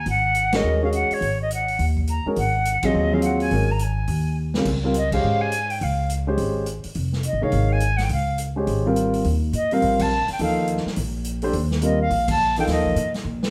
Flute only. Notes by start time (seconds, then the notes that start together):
0.10 F#5
0.56 D#5
0.84 F5
0.94 F#5
1.13 C#5
1.42 D#5
1.54 F#5
2.10 A#5
2.39 F#5
2.85 D#5
3.14 F5
3.24 F#5
3.41 G#5
3.71 A#5
3.82 G#5
4.97 D#5
5.13 F5
5.41 G#5
5.71 G5
5.83 F5
7.26 D#5
7.43 F5
7.72 G#5
7.97 F#5
8.03 G5
8.12 F5
9.55 D#5
9.73 F5
10.01 A5
10.32 G5
10.43 F5
11.84 D#5
12.02 F5
12.30 A5
12.59 G5
12.71 D#5